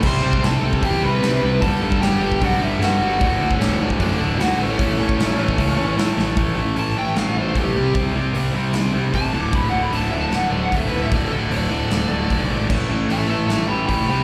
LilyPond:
<<
  \new Staff \with { instrumentName = "Lead electric guitar" } { \time 4/4 \key d \major \tempo 4 = 152 <c'' c'''>4 <a' a''>4 <g' g''>8 <b' b''>4. | <a' a''>4 <g' g''>4 <fis' fis''>8 <e' e''>8 <fis' fis''>4 | <fis' fis''>8. <cis' cis''>8. <d' d''>8 <d' d''>4 <fis' fis''>8 <cis' cis''>8~ | <cis' cis''>2. r4 |
r4 a''8 g''8 f''8 c''8 g'4 | r2. \tuplet 3/2 { a''4 d'''8 } | \tuplet 3/2 { b''8 fis''8 b''8 a''8 e''8 a''8 fis''8 d''8 fis''8 e''8 b'8 e''8 } | \tuplet 3/2 { d''8 a'8 d''8 } d''2. |
r4 <e'' a''>8 <e'' a''>8 <e'' a''>8 <g'' b''>8 <g'' b''>8 <g'' b''>8 | }
  \new Staff \with { instrumentName = "Distorted electric guitar" } { \clef bass \time 4/4 \key d \major <c g c'>8 <c g c'>8 <c g c'>8 <c g c'>8 <c g c'>8 <c g c'>8 <c g c'>8 <c g c'>8 | <g, d g>8 <g, d g>8 <g, d g>8 <g, d g>8 <g, d g>8 <g, d g>8 <g, d g>8 <g, d g>8 | <d, a, d>8 <d, a, d>8 <d, a, d>8 <d, a, d>8 <d, a, d>8 <d, a, d>8 <d, a, d>8 <a, e a>8 | <a, e a>8 <a, e a>8 <a, e a>8 <a, e a>8 <a, e a>8 <a, e a>8 <a, e a>8 <a, e a>8 |
<a, e a>8 <a, e a>8 <a, e a>8 <a, e a>8 <a, e a>8 <a, e a>8 <a, e a>8 <c g c'>8 | <c g c'>8 <c g c'>8 <c g c'>8 <c g c'>8 <c g c'>8 <c g c'>8 <c g c'>8 <d, a, d>8 | <d, a, d>8 <d, a, d>8 <d, a, d>8 <d, a, d>8 <d, a, d>8 <d, a, d>8 <d, a, d>8 <d, a, d>8 | <d, a, d>8 <d, a, d>8 <d, a, d>8 <d, a, d>8 <d, a, d>8 <d, a, d>8 <d, a, d>8 <d, a, d>8 |
<a, e a>8 <a, e a>8 <a, e a>8 <a, e a>8 <a, e a>8 <a, e a>8 <a, e a>8 <c g c'>8 | }
  \new Staff \with { instrumentName = "Distorted electric guitar" } { \clef bass \time 4/4 \key d \major <c g c'>8 <c g c'>8 <c g c'>8 <c g c'>8 <c g c'>8 <c g c'>8 <c g c'>8 <c g c'>8 | <g, d g>8 <g, d g>8 <g, d g>8 <g, d g>8 <g, d g>8 <g, d g>8 <g, d g>8 <g, d g>8 | <d, a, d>8 <d, a, d>8 <d, a, d>8 <d, a, d>8 <d, a, d>8 <d, a, d>8 <d, a, d>8 <a, e a>8 | <a, e a>8 <a, e a>8 <a, e a>8 <a, e a>8 <a, e a>8 <a, e a>8 <a, e a>8 <a, e a>8 |
<a, e a>8 <a, e a>8 <a, e a>8 <a, e a>8 <a, e a>8 <a, e a>8 <a, e a>8 <c g c'>8 | <c g c'>8 <c g c'>8 <c g c'>8 <c g c'>8 <c g c'>8 <c g c'>8 <c g c'>8 <d, a, d>8 | <d, a, d>8 <d, a, d>8 <d, a, d>8 <d, a, d>8 <d, a, d>8 <d, a, d>8 <d, a, d>8 <d, a, d>8 | <d, a, d>8 <d, a, d>8 <d, a, d>8 <d, a, d>8 <d, a, d>8 <d, a, d>8 <d, a, d>8 <d, a, d>8 |
<a, e a>8 <a, e a>8 <a, e a>8 <a, e a>8 <a, e a>8 <a, e a>8 <a, e a>8 <c g c'>8 | }
  \new Staff \with { instrumentName = "Picked electric bass" } { \clef bass \time 4/4 \key d \major c,8 c8 c,8 c,8 e,8 c,8 c8 c,8 | g,,8 g,8 g,,8 g,,8 b,,8 g,,8 g,8 g,,8 | d,,8 d,8 d,,8 d,,8 fis,,8 d,,8 d,8 a,,8 | a,,8 a,8 a,,8 a,,8 cis,8 a,,8 a,8 a,,8 |
a,,8 a,,8 a,,8 a,,8 a,,8 a,,8 b,,8 c,8 | c,8 c,8 c,8 c,8 c,8 c,8 a,,8 d,,8 | d,,8 d,,8 d,,8 d,,8 d,,8 d,,8 d,,8 d,,8 | d,,8 d,,8 d,,8 d,,8 d,,8 d,,8 b,,8 gis,,8 |
a,,8 a,,8 a,,8 a,,8 a,,8 a,,8 a,,8 c,8 | }
  \new DrumStaff \with { instrumentName = "Drums" } \drummode { \time 4/4 <cymc bd>8. bd16 <hho sn>8. bd16 <hho bd>4 <hho sn>4 | <hho bd>8. bd16 <hho sn>8. bd16 <hho bd>4 <hho sn>4 | <hho bd>8. bd16 <hho sn>8. bd16 <hho bd>4 <hho sn>4 | <hho bd>8. bd16 <hho sn>8. bd16 <hho bd>4 <hho sn>8 sn8 |
<hho bd>4 hho4 <hho sn>4 <hho bd>4 | <hho bd>4 hho4 <hho sn>4 <hho bd>4 | <hho bd>4 hho4 <hho sn>4 <hho bd>4 | <hho bd>4 hho4 <hho sn>4 <hho bd>4 |
<cymc bd>4 hho4 <hho sn>4 <hho bd>4 | }
>>